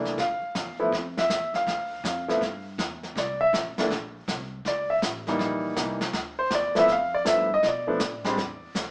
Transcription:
Already playing: upright bass C2, grand piano E3 A3 A#3 D4 D5
0.05 snare
0.18 upright bass D2, grand piano F5, brush sweep, kick, snare
0.41 muted upright bass stroke
0.55 upright bass E2, kick, snare, hi-hat pedal
0.80 grand piano F3 A3 B3 E4
0.92 upright bass F2, brush sweep, kick, snare
1.17 grand piano E5, snare
1.30 upright bass E2, kick, snare, hi-hat pedal
1.54 grand piano F5, snare
1.67 upright bass D2, brush sweep, kick, snare
2.04 upright bass F2, grand piano F5, kick, snare, hi-hat pedal
2.28 grand piano F3 A3 B3 E4, snare
2.41 upright bass G2, brush sweep, kick, snare
2.78 upright bass E2, kick, snare, hi-hat pedal
3.03 snare
3.16 upright bass C2, grand piano D5, brush sweep, kick, snare
3.41 grand piano E5
3.53 upright bass A1, kick, snare, hi-hat pedal
3.77 grand piano E3 A3 A#3 D4, muted upright bass stroke, snare
3.90 upright bass A#1, brush sweep, kick, snare
4.28 upright bass C2, kick, snare, hi-hat pedal
4.65 upright bass C#2, grand piano D5, brush sweep, kick, snare
4.90 grand piano E5
5.02 upright bass A1, kick, snare, hi-hat pedal
5.27 grand piano E3 G3 A#3 D#4, snare
5.39 upright bass A#1, brush sweep, kick, snare
5.76 upright bass C2, grand piano E3 G3 A#3 D#4, kick, snare, hi-hat pedal
6.01 snare
6.13 upright bass D2, brush sweep, kick, snare
6.39 grand piano C5
6.51 upright bass E2, kick, snare, hi-hat pedal
6.55 grand piano D5
6.75 grand piano F3 A3 B3 E4 E5, snare
6.88 upright bass F2, brush sweep, kick, snare
6.92 grand piano F5
7.14 grand piano D5
7.25 upright bass G2, grand piano F3 A3 B3 E4 E5, kick, snare, hi-hat pedal
7.54 grand piano D#5
7.63 upright bass B2, brush sweep, kick, snare
7.67 grand piano D5
7.87 grand piano F3 A3 B3 D4
8.00 upright bass A2, kick, snare, hi-hat pedal
8.24 grand piano G3 G#3 C4 D4, snare
8.37 upright bass E2, brush sweep, kick, snare
8.75 upright bass D2, kick, snare, hi-hat pedal

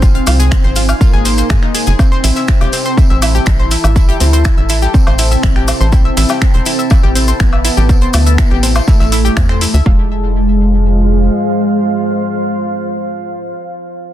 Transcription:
Already playing: analog synth bass G#1, analog synth lead C4, ambient pad D#4 C5 G#5
0.02 synth arpeggio sound F4, kick, tambourine, maracas
0.15 synth arpeggio sound F5, closed hi-hat
0.27 analog synth bass C2, synth arpeggio sound F4, open hi-hat, tambourine, low woodblock, maracas
0.39 synth arpeggio sound G#4, closed hi-hat, maracas
0.51 synth arpeggio sound C4, finger snap, kick, snare, tambourine, maracas
0.64 analog synth bass G#1, synth arpeggio sound C5
0.75 synth arpeggio sound F4, open hi-hat, tambourine, maracas
0.89 synth arpeggio sound F5, low woodblock, maracas
1.01 analog synth lead A#3, synth arpeggio sound F4, kick, tambourine, maracas
1.13 analog synth bass G#1, synth arpeggio sound G#4
1.25 synth arpeggio sound C5, open hi-hat, tambourine, maracas
1.38 synth arpeggio sound C5, maracas
1.50 analog synth bass G#2, synth arpeggio sound G#4, finger snap, kick, snare, tambourine, low woodblock, maracas
1.63 synth arpeggio sound D#4, finger snap
1.74 synth arpeggio sound G#4, open hi-hat, tambourine, maracas
1.87 analog synth bass F#1, synth arpeggio sound G#4, maracas
1.99 synth arpeggio sound C4, analog synth lead C4, ambient pad E4 A4 A5, kick, tambourine, low woodblock, maracas
2.12 synth arpeggio sound C5
2.24 analog synth bass A1, synth arpeggio sound E4, open hi-hat, tambourine, maracas
2.36 synth arpeggio sound E5, snare, maracas
2.48 synth arpeggio sound E4, finger snap, kick, snare, tambourine, maracas
2.61 analog synth bass E1, synth arpeggio sound G4, closed hi-hat, low woodblock
2.72 synth arpeggio sound C4, open hi-hat, tambourine, maracas
2.85 synth arpeggio sound C5, maracas
2.98 synth arpeggio sound E4, kick, tambourine, maracas
3.10 analog synth bass A1, synth arpeggio sound E5
3.22 synth arpeggio sound E4, open hi-hat, tambourine, low woodblock, maracas
3.35 synth arpeggio sound G4, maracas
3.46 analog synth bass A1, synth arpeggio sound C4, analog synth lead E4, finger snap, kick, snare, tambourine, maracas
3.59 synth arpeggio sound C5
3.71 synth arpeggio sound E4, snare, open hi-hat, tambourine, maracas
3.84 analog synth bass A1, synth arpeggio sound E5, low woodblock, maracas
3.96 synth arpeggio sound E4, kick, tambourine, maracas
4.09 synth arpeggio sound G4, closed hi-hat
4.20 analog synth bass D2, synth arpeggio sound C4, open hi-hat, tambourine, maracas
4.33 synth arpeggio sound C5, closed hi-hat, maracas
4.45 synth arpeggio sound E4, finger snap, kick, snare, tambourine, low woodblock, maracas
4.58 analog synth bass A1, synth arpeggio sound E5
4.69 synth arpeggio sound E4, open hi-hat, tambourine, maracas
4.82 synth arpeggio sound G4, maracas
4.94 analog synth lead C4, synth arpeggio sound C4, kick, tambourine, maracas
5.07 analog synth bass A1, synth arpeggio sound C5, low woodblock
5.19 synth arpeggio sound E4, open hi-hat, tambourine, maracas
5.31 synth arpeggio sound E5, maracas
5.43 analog synth bass A1, synth arpeggio sound E4, finger snap, kick, snare, tambourine, maracas
5.56 synth arpeggio sound G4, finger snap
5.68 synth arpeggio sound C4, open hi-hat, tambourine, low woodblock, maracas
5.81 analog synth bass A1, synth arpeggio sound C5, maracas
5.92 analog synth lead C4, synth arpeggio sound E4, kick, tambourine, maracas
6.05 synth arpeggio sound E5
6.17 analog synth bass A1, synth arpeggio sound E4, open hi-hat, tambourine, maracas
6.29 synth arpeggio sound G4, snare, low woodblock, maracas
6.42 synth arpeggio sound C4, finger snap, kick, snare, tambourine, maracas
6.54 analog synth bass E1, synth arpeggio sound C5, closed hi-hat
6.65 synth arpeggio sound E4, open hi-hat, tambourine, maracas
6.79 synth arpeggio sound E5, maracas
6.90 synth arpeggio sound E4, kick, tambourine, low woodblock, maracas
7.03 analog synth bass A1, synth arpeggio sound G4
7.15 synth arpeggio sound C4, open hi-hat, tambourine, maracas
7.28 synth arpeggio sound C5, maracas
7.40 analog synth bass A1, analog synth lead B3, synth arpeggio sound E4, finger snap, kick, snare, tambourine, maracas
7.53 synth arpeggio sound E5, low woodblock
7.65 synth arpeggio sound E4, snare, open hi-hat, tambourine, maracas
7.77 analog synth bass A1, synth arpeggio sound G4, maracas
7.89 synth arpeggio sound C4, kick, tambourine, maracas
8.01 synth arpeggio sound C5, closed hi-hat
8.13 analog synth bass D2, synth arpeggio sound E4, open hi-hat, tambourine, low woodblock, maracas
8.26 synth arpeggio sound E5, closed hi-hat, maracas
8.38 synth arpeggio sound E4, finger snap, kick, snare, tambourine, maracas
8.51 analog synth bass A1, synth arpeggio sound G4
8.63 synth arpeggio sound C4, snare, open hi-hat, tambourine, maracas
8.75 synth arpeggio sound C5, snare, tambourine, low woodblock, maracas
8.88 analog synth lead A3, synth arpeggio sound E4, kick, snare, maracas
9.00 analog synth bass A1, synth arpeggio sound E5, snare, tambourine
9.12 synth arpeggio sound E4, open hi-hat, maracas
9.25 synth arpeggio sound G4, maracas
9.37 analog synth bass E2, synth arpeggio sound C4, finger snap, kick, snare, tambourine, low woodblock, maracas
9.49 synth arpeggio sound C5, finger snap
9.61 synth arpeggio sound E4, open hi-hat, tambourine, maracas
9.74 analog synth bass D2, synth arpeggio sound E5, maracas
9.86 analog synth bass F1, analog synth lead G#3, synth arpeggio sound F4, ambient pad F4 C5 F5, kick

